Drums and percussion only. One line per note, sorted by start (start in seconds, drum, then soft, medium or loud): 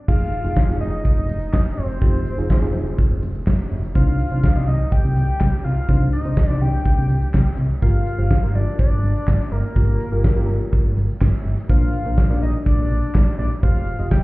0.08 kick loud
0.08 crash loud
0.20 closed hi-hat medium
0.33 closed hi-hat medium
0.45 closed hi-hat medium
0.57 kick loud
0.57 snare loud
0.69 closed hi-hat medium
0.81 closed hi-hat medium
0.93 closed hi-hat medium
1.05 kick loud
1.05 closed hi-hat medium
1.17 closed hi-hat medium
1.29 closed hi-hat medium
1.41 closed hi-hat medium
1.53 kick loud
1.53 snare loud
1.53 clap medium
1.66 closed hi-hat medium
1.77 open hi-hat medium
1.90 closed hi-hat medium
2.02 kick loud
2.02 closed hi-hat medium
2.14 closed hi-hat medium
2.26 closed hi-hat medium
2.38 closed hi-hat medium
2.50 kick loud
2.50 snare loud
2.62 closed hi-hat medium
2.74 closed hi-hat medium
2.86 closed hi-hat medium
2.98 kick loud
2.98 closed hi-hat medium
3.11 closed hi-hat soft
3.23 closed hi-hat medium
3.35 closed hi-hat medium
3.47 kick loud
3.47 snare loud
3.47 clap medium
3.59 closed hi-hat medium
3.71 open hi-hat medium
3.83 closed hi-hat medium
3.95 kick loud
3.95 closed hi-hat medium
4.07 closed hi-hat medium
4.20 closed hi-hat medium
4.32 closed hi-hat medium
4.44 kick loud
4.44 snare loud
4.56 closed hi-hat medium
4.68 closed hi-hat medium
4.80 closed hi-hat soft
4.92 kick loud
4.92 closed hi-hat medium
5.04 closed hi-hat soft
5.16 closed hi-hat medium
5.29 closed hi-hat medium
5.41 kick loud
5.41 snare loud
5.41 clap medium
5.53 closed hi-hat medium
5.64 open hi-hat medium
5.77 closed hi-hat medium
5.89 kick loud
5.89 closed hi-hat medium
6.01 closed hi-hat medium
6.13 closed hi-hat medium
6.25 closed hi-hat medium
6.37 kick loud
6.37 snare loud
6.49 closed hi-hat medium
6.61 closed hi-hat medium
6.73 closed hi-hat medium
6.86 kick loud
6.86 closed hi-hat medium
6.98 closed hi-hat medium
7.10 closed hi-hat medium
7.22 closed hi-hat medium
7.34 kick loud
7.34 snare loud
7.34 clap medium
7.46 closed hi-hat medium
7.58 closed hi-hat medium
7.70 closed hi-hat medium
7.82 kick loud
7.82 closed hi-hat medium
7.94 closed hi-hat medium
8.07 closed hi-hat medium
8.19 closed hi-hat medium
8.31 kick loud
8.31 snare loud
8.43 closed hi-hat medium
8.55 closed hi-hat medium
8.67 closed hi-hat medium
8.79 kick loud
8.79 closed hi-hat medium
8.91 closed hi-hat medium
9.03 closed hi-hat medium
9.16 closed hi-hat medium
9.28 kick loud
9.28 snare loud
9.28 clap medium
9.40 closed hi-hat medium
9.52 open hi-hat medium
9.64 closed hi-hat medium
9.76 kick loud
9.76 closed hi-hat medium
9.88 closed hi-hat medium
10.00 closed hi-hat medium
10.12 closed hi-hat medium
10.24 kick loud
10.24 snare loud
10.37 closed hi-hat medium
10.49 closed hi-hat medium
10.61 closed hi-hat medium
10.73 kick loud
10.73 closed hi-hat medium
10.85 closed hi-hat medium
10.97 closed hi-hat medium
11.09 closed hi-hat medium
11.21 kick loud
11.21 snare loud
11.21 clap medium
11.33 closed hi-hat medium
11.45 open hi-hat medium
11.58 closed hi-hat medium
11.69 kick loud
11.69 closed hi-hat medium
11.81 closed hi-hat medium
11.94 closed hi-hat medium
12.06 closed hi-hat medium
12.18 kick loud
12.18 snare loud
12.30 closed hi-hat medium
12.42 closed hi-hat medium
12.54 closed hi-hat medium
12.66 kick loud
12.66 closed hi-hat medium
12.78 closed hi-hat soft
12.90 closed hi-hat medium
13.03 closed hi-hat medium
13.15 kick loud
13.15 snare loud
13.15 clap medium
13.27 closed hi-hat medium
13.39 open hi-hat medium
13.51 closed hi-hat medium
13.63 kick loud
13.63 closed hi-hat medium
13.75 closed hi-hat medium
13.87 closed hi-hat medium
13.99 closed hi-hat medium
14.11 kick loud
14.11 snare loud